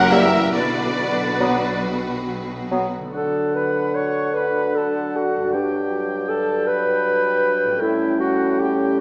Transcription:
0.00 0.54 F#1 loud
0.00 0.54 F#2 medium
0.00 0.57 F#2 medium
0.00 0.12 F#3 loud
0.00 0.57 A#3 medium
0.00 0.10 G4 medium
0.00 0.52 G4 medium
0.00 0.54 A#4 medium
0.00 0.11 F#5 loud
0.00 0.13 F#5 loud
0.00 0.14 F#5 loud
0.10 0.42 E3 medium
0.10 0.26 G3 medium
0.10 0.25 A#3 medium
0.10 0.57 E4 medium
0.10 0.57 G4 medium
0.10 0.53 E5 medium
0.10 0.54 E5 loud
0.10 0.42 E5 medium
0.53 2.89 B1 medium
0.53 3.17 B2 medium
0.53 2.89 B2 medium
0.53 1.81 D3 medium
0.53 2.93 F#4 medium
0.53 2.49 B4 medium
0.53 2.90 B4 medium
0.53 1.80 D5 medium
0.53 1.81 D5 medium
0.98 3.06 D4 medium
1.41 1.56 F#3 medium
1.41 2.25 F#3 medium
1.41 1.56 B3 medium
1.84 2.58 G3 soft
2.26 6.16 F#3 soft
2.71 2.87 F#3 medium
2.71 3.18 B3 soft
2.71 2.87 B3 medium
2.98 5.48 D3 soft
3.02 5.50 A3 soft
3.07 5.44 D4 soft
3.11 5.56 D3 medium
3.11 7.76 F#3 medium
3.11 7.76 D4 medium
3.11 5.48 F#4 soft
3.11 3.56 A4 medium
3.11 5.50 F#5 soft
3.16 3.58 A5 medium
3.55 3.96 B4 medium
3.55 3.97 B5 medium
3.94 4.36 C#5 medium
3.94 4.38 C#6 medium
4.34 4.77 B4 medium
4.34 4.78 B5 medium
4.75 5.18 A4 medium
4.75 5.17 A5 medium
5.16 5.56 F#4 medium
5.16 5.56 F#5 medium
5.36 7.75 G2 soft
5.40 7.67 G3 soft
5.45 7.80 D4 soft
5.50 7.82 F#4 soft
5.50 9.01 G5 soft
5.54 7.83 G2 medium
5.54 6.31 G4 medium
5.54 6.31 G5 medium
6.29 6.69 A4 medium
6.29 6.66 A5 medium
6.67 7.83 B4 medium
6.67 7.49 B5 medium
7.63 9.01 A2 medium
7.68 9.01 G3 soft
7.72 9.01 C#4 soft
7.77 9.01 A4 soft
7.77 8.22 E5 medium
7.81 9.01 A2 medium
7.81 9.01 G3 medium
7.81 9.01 C#4 medium
7.81 8.19 E4 medium
8.20 8.61 F#4 medium
8.20 8.62 F#5 medium
8.60 9.01 G4 medium
8.60 9.01 G5 medium

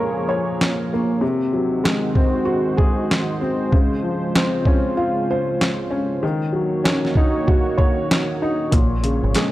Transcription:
0.00 0.59 A#2 medium
0.00 0.91 C#3 medium
0.00 1.20 F3 medium
0.00 1.23 G#3 medium
0.00 0.92 A#3 medium
0.00 1.20 A#3 medium
0.00 1.20 G#4 medium
0.00 1.22 A#4 medium
0.00 1.20 C#5 medium
0.29 1.22 C#5 medium
0.61 snare loud
0.61 clap medium
0.93 1.24 A#3 medium
1.21 3.09 C3 medium
1.21 3.70 D#3 medium
1.21 6.19 G#3 medium
1.21 3.70 F#4 medium
1.21 6.19 C5 medium
1.53 3.41 F#3 medium
1.84 3.72 G#3 medium
1.84 snare loud
1.84 clap medium
2.15 3.40 C4 medium
2.15 kick medium
2.45 3.71 F#4 medium
2.77 3.72 G#4 medium
2.77 kick medium
3.11 snare loud
3.11 clap medium
3.41 3.72 C4 medium
3.72 5.60 C#3 medium
3.72 6.20 C#3 medium
3.72 6.20 F4 medium
3.72 kick loud
4.03 5.91 F3 medium
4.35 6.22 C4 medium
4.35 snare loud
4.35 clap medium
4.65 5.89 C#4 medium
4.65 kick medium
4.97 6.22 F4 medium
5.31 6.23 C5 medium
5.61 snare loud
5.61 clap medium
5.91 6.22 C#4 medium
6.23 8.10 D#3 medium
6.23 8.70 D#3 medium
6.23 8.70 A#3 medium
6.23 8.70 F#4 medium
6.23 8.70 C#5 medium
6.53 8.41 F#3 medium
6.84 8.72 C#4 medium
6.84 snare loud
6.84 clap medium
7.05 snare soft
7.15 8.41 D#4 medium
7.15 kick medium
7.47 8.72 F#4 medium
7.47 kick medium
7.78 8.72 C#5 medium
7.78 kick medium
8.11 snare loud
8.11 clap medium
8.42 8.73 D#4 medium
8.72 9.19 A#1 loud
8.72 9.52 A#2 medium
8.72 9.52 F3 medium
8.72 9.52 A#3 medium
8.72 9.52 G#4 medium
8.72 9.52 C#5 medium
8.72 kick loud
8.72 closed hi-hat medium
9.04 9.52 C#3 medium
9.04 closed hi-hat medium
9.24 9.34 G#1 medium
9.35 9.52 G#3 medium
9.35 snare loud
9.35 clap medium
9.35 closed hi-hat medium

